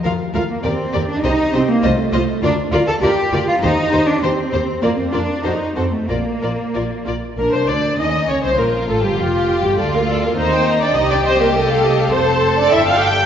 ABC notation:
X:1
M:2/4
L:1/16
Q:1/4=100
K:Bb
V:1 name="Violin section"
f2 f2 d2 d2 | e2 e2 e2 e2 | d2 d2 d2 d2 | c2 c2 c2 c2 |
d2 d2 c2 c2 | d2 d2 d2 d2 | B c d2 e2 _d c | B2 A G F3 G |
d f d f b g b g | e g e g e f e f | [K:F] a4 g4 |]
V:2 name="Violin section"
B2 B2 B2 B2 | c2 c2 c2 c2 | B2 B2 B2 B2 | c2 c2 c2 c2 |
B2 B2 A2 A2 | B2 B2 B2 B2 | D4 _D4 | F4 G4 |
F4 E4 | G8 | [K:F] A8 |]
V:3 name="Viola section"
F2 F2 G2 G2 | G2 G2 F2 F2 | F2 F2 F2 F2 | G2 G2 G2 G2 |
F2 F2 _G2 G2 | F2 F2 F2 F2 | B c d2 e2 _d c | B2 A G F3 G |
A B A B c3 d | e d c B A4 | [K:F] c3 d e f g2 |]
V:4 name="Cello section"
z2 A, B, C3 D | E2 C B, A,4 | D2 F A G3 F | E3 D C4 |
B, C D2 E2 C A, | B,6 z2 | B, C D2 E2 _D C | B,2 A, G, F,3 G, |
A, B, A, B, C3 D | E D C B, A,4 | [K:F] C3 D E F G2 |]
V:5 name="Double bass section" clef=bass
D,,2 D,,2 E,,2 E,,2 | C,,2 C,,2 C,,2 C,,2 | D,,2 D,,2 D,,2 D,,2 | E,,2 E,,2 E,,2 E,,2 |
F,,2 F,,2 F,,2 F,,2 | B,,,2 B,,,2 B,,,2 B,,,2 | B,,, C,, D,,2 E,,2 _D,, C,, | B,,,2 A,,, G,,, F,,,3 G,,, |
D,,4 E,,4 | C,,8 | [K:F] F,,,4 G,,,4 |]